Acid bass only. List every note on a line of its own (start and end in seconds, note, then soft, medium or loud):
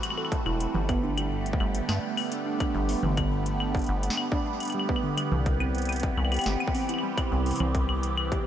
0.46 0.67 E1 loud
0.75 1.54 G1 loud
1.60 1.82 G1 loud
1.89 1.99 G2 medium
2.75 2.96 G1 medium
3.03 3.83 G1 loud
3.89 4.10 G1 loud
5.32 6.12 C2 loud
6.18 6.39 C2 loud
6.46 6.57 G1 medium
7.32 7.53 C2 medium
7.60 8.40 C2 loud